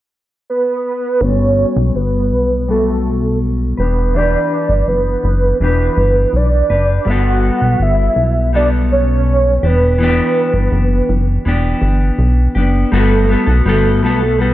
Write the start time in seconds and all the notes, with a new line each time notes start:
0.50 B4
1.21 G1 G3 B3 C#5
1.25 F#4 A4
1.76 B1
1.95 G1 B4
2.31 B1
2.68 G3 B3 F#4 A4
3.77 E1 D4 G4 B4
4.14 E3 D4 G4 D5
4.19 B4
4.69 G1
4.88 F#1 B4
5.24 F#1
5.60 E1 E3 D4 G4 B4
5.64 B4
5.97 G1
6.33 B1 D5
6.70 F#1 D4 G4 B4
7.05 G1 G3 B3
7.09 F#4 A4 F#5
7.61 B1
7.80 G1 E5
8.16 B1
8.53 G3 B3 F#4 A4 D5
8.92 C#5
9.63 E1 B3 D4 G4 B4
9.98 E3 B3
10.03 D4 G4
10.54 G1
10.72 F#1
11.09 F#1
11.45 E1 E3 B3 D4 G4
11.82 G1
12.19 B1
12.55 F#1 B3 D4 G4
12.91 G1 G3 B3 F#4 A4
13.27 G3 B3 F#4
13.32 A4
13.46 B1 B3 F#4 A4
13.65 G1 G3 B3 F#4 A4
14.02 B1 G3 B3 F#4 A4
14.20 B3 F#4 A4
14.38 G3 B3 F#4 A4 B4